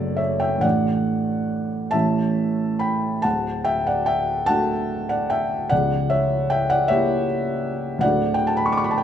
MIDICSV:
0, 0, Header, 1, 2, 480
1, 0, Start_track
1, 0, Key_signature, 2, "major"
1, 0, Tempo, 872093
1, 352, Time_signature, 6, 3, 24, 8
1, 1787, Tempo, 828729
1, 2747, Tempo, 803213
1, 3707, Tempo, 759494
1, 5301, End_track
2, 0, Start_track
2, 0, Title_t, "Felt piano"
2, 0, Program_c, 0, 0
2, 0, Control_c, 0, 64, 127
2, 0, Note_on_c, 0, 30, 60
2, 0, Note_on_c, 0, 42, 71
2, 0, Note_on_c, 0, 57, 50
2, 0, Note_on_c, 0, 62, 49
2, 0, Note_on_c, 0, 69, 79
2, 0, Note_on_c, 0, 74, 105
2, 81, Note_off_c, 0, 69, 0
2, 91, Note_on_c, 0, 76, 86
2, 99, Note_off_c, 0, 74, 0
2, 100, Note_on_c, 0, 73, 66
2, 217, Note_off_c, 0, 73, 0
2, 218, Note_off_c, 0, 76, 0
2, 218, Note_on_c, 0, 79, 82
2, 227, Note_on_c, 0, 76, 63
2, 320, Note_on_c, 0, 45, 57
2, 326, Note_on_c, 0, 33, 54
2, 328, Note_off_c, 0, 57, 0
2, 329, Note_off_c, 0, 62, 0
2, 330, Note_off_c, 0, 30, 0
2, 330, Note_off_c, 0, 42, 0
2, 336, Note_on_c, 0, 78, 89
2, 341, Note_off_c, 0, 76, 0
2, 343, Note_on_c, 0, 74, 71
2, 346, Note_off_c, 0, 79, 0
2, 348, Note_on_c, 0, 57, 44
2, 355, Note_on_c, 0, 62, 44
2, 355, Note_on_c, 0, 69, 44
2, 363, Control_c, 0, 64, 0
2, 466, Control_c, 0, 64, 127
2, 1026, Note_off_c, 0, 45, 0
2, 1030, Note_off_c, 0, 33, 0
2, 1038, Note_off_c, 0, 74, 0
2, 1040, Note_off_c, 0, 57, 0
2, 1044, Note_off_c, 0, 62, 0
2, 1044, Note_off_c, 0, 69, 0
2, 1050, Note_on_c, 0, 81, 93
2, 1055, Note_on_c, 0, 76, 73
2, 1056, Note_off_c, 0, 78, 0
2, 1063, Note_on_c, 0, 33, 59
2, 1064, Note_on_c, 0, 45, 65
2, 1065, Note_on_c, 0, 57, 48
2, 1065, Note_on_c, 0, 61, 47
2, 1069, Note_on_c, 0, 69, 46
2, 1075, Control_c, 0, 64, 0
2, 1191, Control_c, 0, 64, 127
2, 1519, Note_off_c, 0, 76, 0
2, 1537, Note_on_c, 0, 83, 86
2, 1538, Note_off_c, 0, 81, 0
2, 1546, Note_on_c, 0, 79, 67
2, 1765, Note_off_c, 0, 33, 0
2, 1765, Note_off_c, 0, 45, 0
2, 1765, Note_off_c, 0, 61, 0
2, 1766, Note_off_c, 0, 57, 0
2, 1768, Note_off_c, 0, 69, 0
2, 1770, Note_off_c, 0, 79, 0
2, 1773, Note_on_c, 0, 81, 94
2, 1780, Note_on_c, 0, 78, 74
2, 1783, Note_off_c, 0, 83, 0
2, 1785, Note_on_c, 0, 38, 58
2, 1787, Note_on_c, 0, 26, 58
2, 1796, Control_c, 0, 64, 0
2, 1903, Control_c, 0, 64, 127
2, 2010, Note_off_c, 0, 78, 0
2, 2018, Note_on_c, 0, 79, 97
2, 2023, Note_off_c, 0, 81, 0
2, 2023, Note_on_c, 0, 76, 73
2, 2138, Note_off_c, 0, 76, 0
2, 2144, Note_off_c, 0, 79, 0
2, 2146, Note_on_c, 0, 78, 82
2, 2152, Note_on_c, 0, 74, 68
2, 2258, Note_on_c, 0, 79, 91
2, 2262, Note_off_c, 0, 74, 0
2, 2264, Note_on_c, 0, 76, 63
2, 2267, Note_off_c, 0, 78, 0
2, 2488, Note_off_c, 0, 76, 0
2, 2492, Note_on_c, 0, 81, 110
2, 2498, Note_on_c, 0, 78, 75
2, 2502, Note_off_c, 0, 79, 0
2, 2506, Note_on_c, 0, 57, 52
2, 2509, Note_on_c, 0, 62, 48
2, 2514, Note_on_c, 0, 66, 54
2, 2840, Note_off_c, 0, 78, 0
2, 2859, Note_on_c, 0, 78, 87
2, 2861, Note_off_c, 0, 81, 0
2, 2867, Note_on_c, 0, 74, 63
2, 2980, Note_off_c, 0, 74, 0
2, 2982, Note_on_c, 0, 79, 91
2, 2984, Note_off_c, 0, 78, 0
2, 2990, Note_on_c, 0, 76, 71
2, 3204, Note_off_c, 0, 38, 0
2, 3204, Note_off_c, 0, 57, 0
2, 3205, Note_off_c, 0, 26, 0
2, 3206, Note_off_c, 0, 62, 0
2, 3208, Note_off_c, 0, 66, 0
2, 3213, Note_off_c, 0, 76, 0
2, 3220, Note_on_c, 0, 78, 97
2, 3225, Note_off_c, 0, 79, 0
2, 3226, Note_on_c, 0, 74, 76
2, 3231, Note_on_c, 0, 25, 55
2, 3236, Note_on_c, 0, 37, 64
2, 3241, Control_c, 0, 64, 0
2, 3334, Control_c, 0, 64, 127
2, 3452, Note_off_c, 0, 74, 0
2, 3460, Note_on_c, 0, 76, 91
2, 3465, Note_on_c, 0, 73, 72
2, 3466, Note_off_c, 0, 78, 0
2, 3688, Note_off_c, 0, 73, 0
2, 3698, Note_off_c, 0, 76, 0
2, 3700, Note_on_c, 0, 79, 97
2, 3707, Note_on_c, 0, 76, 68
2, 3821, Note_off_c, 0, 76, 0
2, 3825, Note_on_c, 0, 78, 101
2, 3826, Note_off_c, 0, 79, 0
2, 3834, Note_on_c, 0, 74, 73
2, 3941, Note_on_c, 0, 76, 103
2, 3944, Note_off_c, 0, 74, 0
2, 3948, Note_off_c, 0, 78, 0
2, 3950, Note_on_c, 0, 73, 76
2, 3956, Note_on_c, 0, 58, 57
2, 3958, Note_on_c, 0, 64, 55
2, 3962, Note_on_c, 0, 67, 63
2, 4170, Note_off_c, 0, 73, 0
2, 4182, Note_off_c, 0, 76, 0
2, 4639, Note_off_c, 0, 25, 0
2, 4639, Note_on_c, 0, 38, 73
2, 4641, Note_off_c, 0, 58, 0
2, 4642, Note_off_c, 0, 37, 0
2, 4642, Note_off_c, 0, 64, 0
2, 4644, Note_off_c, 0, 67, 0
2, 4653, Note_on_c, 0, 78, 100
2, 4662, Note_on_c, 0, 74, 80
2, 4670, Note_on_c, 0, 57, 51
2, 4671, Note_on_c, 0, 26, 65
2, 4672, Control_c, 0, 64, 0
2, 4674, Note_on_c, 0, 62, 50
2, 4678, Note_on_c, 0, 66, 51
2, 4766, Control_c, 0, 64, 127
2, 4865, Note_off_c, 0, 74, 0
2, 4865, Note_on_c, 0, 79, 89
2, 4876, Note_off_c, 0, 78, 0
2, 4945, Note_on_c, 0, 81, 90
2, 4949, Note_off_c, 0, 79, 0
2, 5007, Note_on_c, 0, 83, 88
2, 5012, Note_off_c, 0, 81, 0
2, 5062, Note_off_c, 0, 83, 0
2, 5063, Note_on_c, 0, 85, 83
2, 5106, Note_on_c, 0, 86, 85
2, 5108, Note_off_c, 0, 85, 0
2, 5138, Note_on_c, 0, 85, 87
2, 5146, Note_off_c, 0, 86, 0
2, 5181, Note_on_c, 0, 83, 83
2, 5182, Note_off_c, 0, 85, 0
2, 5222, Note_on_c, 0, 81, 80
2, 5227, Note_off_c, 0, 83, 0
2, 5266, Note_on_c, 0, 79, 82
2, 5275, Note_off_c, 0, 81, 0
2, 5301, Note_off_c, 0, 26, 0
2, 5301, Note_off_c, 0, 38, 0
2, 5301, Note_off_c, 0, 57, 0
2, 5301, Note_off_c, 0, 62, 0
2, 5301, Note_off_c, 0, 66, 0
2, 5301, Note_off_c, 0, 79, 0
2, 5301, End_track
0, 0, End_of_file